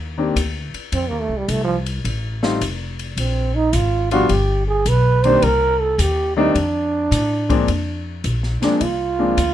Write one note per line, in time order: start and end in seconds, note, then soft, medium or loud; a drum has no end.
0.00 0.34 D#2 medium
0.18 0.34 D#3 medium
0.18 0.35 A#3 medium
0.18 0.35 C4 medium
0.18 0.35 D4 medium
0.18 0.35 G4 medium
0.36 0.72 D2 medium
0.36 kick soft
0.36 hi-hat pedal medium
0.36 ride medium
0.74 muted upright bass stroke soft
0.74 ride soft
0.92 1.10 F2 medium
0.92 1.09 C4 medium
0.92 kick soft
0.92 ride medium
1.08 1.29 D#2 medium
1.08 1.22 A#3 medium
1.21 1.39 A3 medium
1.29 1.47 C2 medium
1.37 1.52 G3 medium
1.48 2.03 C2 medium
1.48 1.63 A3 medium
1.48 kick soft
1.48 hi-hat pedal soft
1.48 ride medium
1.64 1.77 F3 medium
1.86 ride soft
2.04 2.59 A1 medium
2.04 kick soft
2.04 ride medium
2.43 2.59 G3 medium
2.43 2.59 A3 medium
2.43 2.60 C4 medium
2.43 2.60 D#4 medium
2.43 2.60 F4 medium
2.43 snare medium
2.61 3.16 F1 medium
2.61 kick soft
2.61 hi-hat pedal soft
2.61 ride medium
2.99 ride soft
3.17 3.72 A#1 medium
3.17 3.56 C4 medium
3.17 kick soft
3.17 ride medium
3.55 3.77 D#4 medium
3.73 4.28 G#1 medium
3.73 4.12 F4 medium
3.73 kick soft
3.73 hi-hat pedal soft
3.73 ride medium
4.11 4.28 F3 medium
4.11 4.28 G3 medium
4.11 4.28 B3 medium
4.11 4.28 D4 medium
4.11 4.29 F4 medium
4.11 4.32 F#4 loud
4.11 ride soft
4.29 4.84 G1 medium
4.29 4.67 G4 medium
4.29 kick soft
4.29 ride medium
4.67 4.89 G#4 medium
4.85 5.41 B1 medium
4.85 5.26 B4 medium
4.85 kick soft
4.85 hi-hat pedal medium
4.85 ride medium
5.24 5.41 D#3 medium
5.24 5.41 G3 medium
5.24 5.41 A#3 medium
5.24 5.41 C4 medium
5.24 5.41 D4 medium
5.24 5.45 C5 loud
5.24 ride soft
5.42 5.97 C2 medium
5.42 5.82 A#4 loud
5.42 kick soft
5.42 ride medium
5.81 6.02 A4 medium
5.98 6.53 D#2 medium
5.98 6.36 G4 medium
5.98 kick soft
5.98 hi-hat pedal medium
5.98 ride medium
6.36 6.53 D#3 medium
6.36 6.53 G3 medium
6.36 6.54 A3 medium
6.36 6.54 C4 medium
6.36 6.54 D4 medium
6.36 6.57 D#4 medium
6.55 7.10 F2 medium
6.55 8.25 D4 medium
6.55 kick soft
6.55 ride medium
7.11 7.66 A2 medium
7.11 kick soft
7.11 hi-hat pedal medium
7.11 ride medium
7.49 7.66 F3 medium
7.49 7.66 G#3 medium
7.49 7.66 A#3 medium
7.49 7.66 C4 medium
7.49 7.67 D4 medium
7.49 kick medium
7.49 ride soft
7.68 8.23 F2 medium
7.68 kick soft
7.68 ride medium
8.24 8.60 A#1 medium
8.24 kick soft
8.24 hi-hat pedal medium
8.24 ride medium
8.43 snare soft
8.62 8.79 F3 medium
8.62 8.79 G#3 medium
8.62 8.79 A#3 medium
8.62 8.79 C4 medium
8.62 8.84 D4 medium
8.62 8.80 D4 medium
8.62 muted upright bass stroke soft
8.62 snare soft
8.62 ride soft
8.81 9.36 C2 medium
8.81 9.54 F4 medium
8.81 kick soft
8.81 ride medium
9.19 9.36 F3 medium
9.19 9.36 G#3 medium
9.19 9.36 A#3 medium
9.19 9.36 C4 medium
9.19 9.36 D4 medium
9.37 9.54 D2 medium
9.37 kick soft
9.37 hi-hat pedal medium
9.37 ride medium